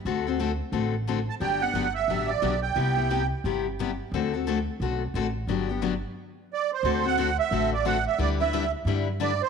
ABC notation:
X:1
M:4/4
L:1/16
Q:"Swing" 1/4=177
K:G
V:1 name="Accordion"
z12 z2 a2 | g2 f4 e4 d4 g2- | g6 z8 z2 | z16 |
z12 d2 c2- | c2 f4 e4 d2 f2 e2 | d2 e4 z6 d2 c2 |]
V:2 name="Steel-string acoustic guitar"
[D,A,CFA]2 [CFA]2 [D,A,CFA] z3 [D,A,CFA]2 z2 [D,A,CFA] z3 | [D,F,B,DG]2 [B,DG]2 [D,F,B,DG] z3 [D,F,B,DG]2 z2 [D,F,B,DG] z3 | [C,G,B,EG]2 [B,EG]2 [C,G,B,EG] z3 [C,G,B,EG]2 z2 [C,G,B,EG] z3 | [D,A,CFA]2 [CFA]2 [D,A,CFA] z3 [D,A,CFA]2 z2 [D,A,CFA] z3 |
[D,F,B,DG]2 [B,DG]2 [D,F,B,DG] z8 z3 | [D,A,CFA]2 [CFA]2 [D,A,CFA] z3 [D,A,CFA]2 z2 [D,A,CFA] z3 | [D,G,DEB]2 [DEB]2 [D,G,DEB] z3 [D,G,DEB]2 z2 [D,G,DEB] z3 |]
V:3 name="Upright bass" clef=bass
D,,8 A,,,8 | G,,,4 G,,,4 A,,,4 B,,,4 | C,,8 G,,,8 | D,,8 B,,,4 A,,,4 |
G,,,8 z8 | D,,8 A,,,8 | D,,8 G,,8 |]